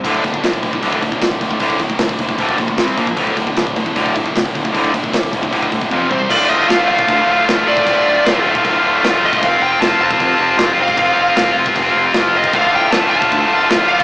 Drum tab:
CC |x---------------|----------------|----------------|----------------|
HH |o-o-o-o-o-o-o-o-|o-o-o-o-o-o-o-o-|o-o-o-o-o-o-o-o-|o-o-o-o-o-o-----|
SD |----o-------o---|----o-------o---|----o-------o---|----o-----------|
T1 |----------------|----------------|----------------|------------o---|
BD |oooooooooooooooo|oooooooooooooooo|oooooooooooooooo|ooooooooooooo-o-|

CC |x---x---x---x---|x---x---x---x---|x---x---x---x---|x---x---x---x---|
HH |----------------|----------------|----------------|----------------|
SD |----o-------o---|----o-------o---|----o-------o---|----o-------o---|
T1 |----------------|----------------|----------------|----------------|
BD |o------oo------o|o------oo------o|o------oo------o|o------oo------o|

CC |x---x---x---x---|
HH |----------------|
SD |----o-------o---|
T1 |----------------|
BD |o------oo------o|